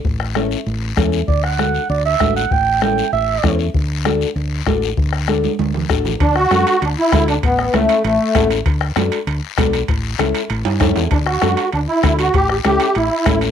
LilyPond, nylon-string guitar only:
\new Staff \with { instrumentName = "Nylon-string guitar" } { \time 4/4 \key d \major \tempo 4 = 195 r4 <cis' e' a'>8 r4. <cis' e' a'>8 r8 | r4 <d' fis' a'>8 r4. <d' fis' a'>8 r8 | r4 <cis' e' a'>8 r4. <cis' e' a'>8 r8 | r4 <d' fis' a'>8 r4. <d' fis' a'>8 r8 |
r4 <d' fis' a'>8 r4. <d' fis' a'>8 r8 | r4 <d' fis' a'>8 r4. <d' fis' a'>8 r8 | r4 <cis' e' a'>8 r4. <cis' e' a'>8 r8 | r4 <d' fis' a'>8 r4. <d' fis' a'>8 r8 |
r4 <cis' e' a'>8 r4. <cis' e' a'>8 r8 | r4 <d' fis' a'>8 r4. <d' fis' a'>8 r8 | r4 <cis' e' a'>8 r4. <cis' e' a'>8 r8 | }